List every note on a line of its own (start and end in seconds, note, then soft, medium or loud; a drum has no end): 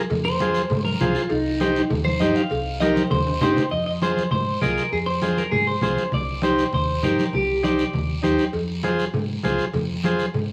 0.10 0.59 F2 loud
0.10 cowbell loud
0.10 high conga soft
0.10 low conga medium
0.10 long guiro medium
0.25 0.84 C5 loud
0.40 0.62 F4 medium
0.40 0.62 G#4 medium
0.40 0.62 C5 medium
0.40 cowbell medium
0.40 high conga loud
0.40 short guiro medium
0.54 short guiro medium
0.70 0.94 G#2 medium
0.70 cowbell medium
0.70 high conga soft
0.70 low conga medium
0.70 long guiro medium
0.85 1.00 A#4 medium
0.85 high conga medium
1.00 1.12 C2 medium
1.00 1.22 F4 medium
1.00 1.14 F4 medium
1.00 1.22 G#4 medium
1.00 1.22 C5 medium
1.00 cowbell medium
1.00 high conga medium
1.00 low conga medium
1.00 short guiro medium
1.15 1.31 F4 medium
1.15 short guiro medium
1.29 1.79 C2 medium
1.29 1.89 D#4 loud
1.29 cowbell loud
1.29 high conga soft
1.29 long guiro medium
1.60 1.82 D#4 medium
1.60 1.82 G4 medium
1.60 1.82 C5 medium
1.60 cowbell medium
1.60 high conga loud
1.60 short guiro medium
1.76 short guiro medium
1.90 2.15 D#2 loud
1.90 cowbell medium
1.90 high conga soft
1.90 low conga medium
1.90 long guiro medium
2.05 2.20 C5 loud
2.05 high conga medium
2.20 2.33 G2 medium
2.20 2.42 D#4 medium
2.20 2.42 G4 medium
2.20 2.42 C5 medium
2.20 2.35 D#5 medium
2.20 cowbell medium
2.20 high conga medium
2.20 short guiro medium
2.35 2.80 F5 loud
2.35 short guiro medium
2.50 2.99 C2 loud
2.50 cowbell loud
2.50 long guiro medium
2.80 3.03 D#4 medium
2.80 3.03 G4 medium
2.80 3.03 A#4 medium
2.80 2.94 D#5 medium
2.80 cowbell medium
2.80 high conga loud
2.80 short guiro medium
2.94 3.10 C5 medium
2.94 high conga medium
2.94 short guiro medium
3.10 3.35 D#2 medium
3.10 3.40 C5 loud
3.10 cowbell medium
3.10 low conga loud
3.10 long guiro medium
3.27 high timbale medium
3.41 3.53 G2 medium
3.41 3.63 D#4 medium
3.41 3.63 G4 medium
3.41 3.71 C5 loud
3.41 3.63 C5 medium
3.41 cowbell medium
3.41 low conga medium
3.41 high timbale loud
3.41 short guiro medium
3.56 low conga medium
3.56 low timbale medium
3.56 short guiro medium
3.71 4.20 F2 medium
3.71 3.85 D#5 loud
3.71 high conga soft
3.71 long guiro medium
3.86 3.91 D#5 medium
4.02 4.23 F4 medium
4.02 4.23 G#4 medium
4.02 4.30 C5 medium
4.02 4.24 C5 medium
4.02 high conga medium
4.02 short guiro medium
4.16 high conga medium
4.16 short guiro medium
4.31 4.56 G#2 medium
4.31 4.60 C5 loud
4.31 low conga medium
4.31 long guiro medium
4.47 high conga soft
4.61 4.74 C2 medium
4.61 4.83 F4 medium
4.61 4.83 G#4 medium
4.61 4.92 A#4 medium
4.61 4.83 D#5 medium
4.61 high conga medium
4.61 low conga medium
4.61 short guiro medium
4.77 short guiro medium
4.92 5.40 F2 medium
4.92 4.98 G#4 medium
4.92 long guiro medium
5.06 5.38 C5 medium
5.22 5.43 F4 medium
5.22 5.44 G#4 medium
5.22 5.44 C5 medium
5.22 high conga medium
5.22 short guiro medium
5.37 5.51 A#4 medium
5.37 high conga medium
5.37 short guiro medium
5.51 5.76 G#2 medium
5.51 5.66 G#4 medium
5.51 low conga medium
5.51 long guiro medium
5.66 5.81 C5 medium
5.66 high conga soft
5.81 5.94 C2 medium
5.81 6.04 F4 medium
5.81 6.04 G#4 medium
5.81 6.04 C5 medium
5.81 6.11 C5 medium
5.81 high conga medium
5.81 low conga medium
5.81 short guiro medium
5.96 high conga medium
5.96 short guiro medium
6.12 6.60 C2 medium
6.12 6.41 D5 medium
6.12 high conga soft
6.12 low conga medium
6.12 long guiro medium
6.42 6.64 D#4 medium
6.42 6.64 G4 medium
6.42 6.73 C5 medium
6.42 6.64 C5 medium
6.42 high conga medium
6.42 short guiro medium
6.58 short guiro medium
6.73 6.97 D#2 medium
6.73 7.02 C5 medium
6.73 low conga medium
6.73 long guiro medium
6.88 high conga soft
7.02 7.15 G2 medium
7.02 7.24 D#4 medium
7.02 7.24 G4 medium
7.02 7.34 A#4 medium
7.02 7.25 C5 medium
7.02 high conga medium
7.02 low conga medium
7.02 short guiro medium
7.19 high conga medium
7.19 short guiro medium
7.33 7.81 C2 medium
7.33 7.65 G4 medium
7.33 high conga soft
7.33 low conga medium
7.33 long guiro medium
7.63 7.84 D#4 medium
7.63 7.84 G4 medium
7.63 7.85 C5 medium
7.63 8.20 D5 medium
7.63 high conga medium
7.63 short guiro medium
7.79 short guiro medium
7.93 8.18 D#2 medium
7.93 low conga medium
7.93 long guiro medium
8.09 high conga soft
8.23 8.35 D#2 medium
8.23 8.44 D#4 medium
8.23 8.45 G4 medium
8.23 8.45 C5 medium
8.23 high conga medium
8.23 short guiro medium
8.39 short guiro medium
8.53 9.02 F2 medium
8.53 cowbell loud
8.53 high conga soft
8.53 long guiro medium
8.83 9.05 F4 medium
8.83 9.05 G#4 medium
8.83 9.05 C5 medium
8.83 cowbell medium
8.83 high conga loud
8.83 short guiro medium
8.99 short guiro medium
9.13 9.38 G#2 medium
9.13 cowbell medium
9.13 low conga medium
9.13 long guiro medium
9.29 high conga soft
9.43 9.56 C2 medium
9.43 9.65 F4 medium
9.43 9.65 G#4 medium
9.43 9.66 C5 medium
9.43 cowbell medium
9.43 high conga medium
9.43 low conga medium
9.43 low timbale medium
9.43 short guiro medium
9.58 short guiro medium
9.73 10.22 F2 medium
9.73 cowbell loud
9.73 high conga soft
9.73 low conga medium
9.73 long guiro medium
10.03 10.26 F4 medium
10.03 10.26 G#4 medium
10.03 10.26 C5 medium
10.03 cowbell medium
10.03 high conga loud
10.03 short guiro medium
10.19 short guiro medium
10.34 10.52 G#2 medium
10.34 cowbell medium
10.34 low conga medium
10.34 long guiro medium